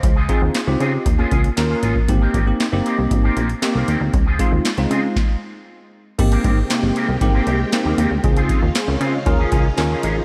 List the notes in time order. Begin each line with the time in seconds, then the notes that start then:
Already playing: C5 D#5
0.03 C#2, muted clean electric guitar stroke, kick, closed hi-hat
0.16 G#3 C4 F4 G#4
0.29 G#3 C4 D#4 F4 G#4, kick, closed hi-hat
0.42 D#2, muted clean electric guitar stroke
0.55 snare, clap, closed hi-hat
0.67 C#2 C4 D#4 F4 G4, muted clean electric guitar stroke
0.80 C#3 G#3 C4 F4 G#4, closed hi-hat
0.93 muted clean electric guitar stroke
1.06 D#2, muted clean electric guitar stroke, kick, closed hi-hat
1.18 G#3 A#3 C#4 F4 G#4
1.31 C#2 G#3 C#4 F4 G#4, kick, closed hi-hat
1.44 muted clean electric guitar stroke, closed hi-hat
1.57 D#2 A#3 C#4 F4 A#4, muted clean electric guitar stroke, snare, clap, closed hi-hat
1.70 G#3 C#4 F4 G#4
1.82 A1 G#3 C#4 F4 G#4, closed hi-hat
1.95 muted clean electric guitar stroke, kick
2.08 G#1 A#3 C4 D#4 G4, muted clean electric guitar stroke, kick, closed hi-hat
2.21 D#3 A#3 C4 G4
2.34 G#1 D#3 A#3 C4 G4, kick, closed hi-hat
2.47 A#3 C4 D#4 G4, muted clean electric guitar stroke
2.60 snare, clap, closed hi-hat
2.72 G1 A#3 C4 D#4 G4, muted clean electric guitar stroke
2.85 D#3 A#3 C4 G4, closed hi-hat
2.98 C2, muted clean electric guitar stroke
3.11 G#1, muted clean electric guitar stroke, kick, closed hi-hat
3.24 D#3 A#3 C4 G4
3.36 A#1 D#3 A#3 C4 G4, closed hi-hat
3.49 muted clean electric guitar stroke, closed hi-hat
3.62 A#3 C4 D#4 G4, muted clean electric guitar stroke, snare, clap, closed hi-hat
3.75 C2 D#3 A#3 C4 G4
3.88 D#2 D#3 A#3 C4 G4, closed hi-hat
4.01 D2, muted clean electric guitar stroke
4.13 C#2, muted clean electric guitar stroke, kick, closed hi-hat
4.26 G#3 C4 F4 G#4
4.39 G#3 C4 D#4 F4 G#4, kick, closed hi-hat
4.52 D#2, muted clean electric guitar stroke
4.65 snare, clap, closed hi-hat
4.77 C#2 G#3 C4 D#4 F4, muted clean electric guitar stroke, closed hi-hat
4.90 C#3 G#3 C4 F4 G#4, closed hi-hat
5.03 muted clean electric guitar stroke
5.16 kick, snare
6.18 G#1 C3 G#3 A#3 C4 D#4 G4, kick, closed hi-hat, crash
6.31 D#3 A#3 C4 G4, closed hi-hat
6.44 G#1 D#3 A#3 C4 G4, kick, closed hi-hat
6.57 muted clean electric guitar stroke
6.70 A#3 C4 D#4 G4, snare, clap, closed hi-hat
6.83 G1, muted clean electric guitar stroke
6.95 D#3 A#3 C4 G4, closed hi-hat
7.08 C2, muted clean electric guitar stroke
7.21 G#1 A#3 C4 D#4 G4, muted clean electric guitar stroke, kick, closed hi-hat
7.34 D#3 A#3 C4 G4
7.47 C2 D#3 A#3 C4 G4, closed hi-hat
7.60 muted clean electric guitar stroke
7.72 A#3 C4 D#4 G4, muted clean electric guitar stroke, snare, clap, closed hi-hat
7.85 D#2 D#3 A#3 C4 G4
7.98 D#2 D#3 A#3 C4 G4, closed hi-hat
8.11 D2, muted clean electric guitar stroke
8.23 C#2 C#3 C4 D#4 F4 G#4, muted clean electric guitar stroke, kick, closed hi-hat
8.36 G#3 C4 F4 G#4, closed hi-hat
8.49 G#3 C4 F4 G#4, kick, closed hi-hat
8.62 D#2 F4 G#4, muted clean electric guitar stroke
8.75 G#4 C5, snare, clap, closed hi-hat
8.88 C#2 A#4 C#5, muted clean electric guitar stroke
9.00 C#3 G#3 C4 F4 G#4 C5 D#5, closed hi-hat
9.13 C#5 F5, muted clean electric guitar stroke
9.26 D#2 G#3 C#4 D#4 F4 G#4 A#4 F5, muted clean electric guitar stroke, kick, closed hi-hat
9.39 F3 A#3 C#4 G#4
9.52 C#2 F3 A#3 C#4 G#4 G#5, kick, closed hi-hat
9.65 muted clean electric guitar stroke
9.77 D#2 C#4 F4 G#4 A#4 A#5, muted clean electric guitar stroke, snare, clap, closed hi-hat
9.91 F3 A#3 C#4 G#4
10.03 A1 F3 A#3 C#4 G#4, closed hi-hat
10.16 muted clean electric guitar stroke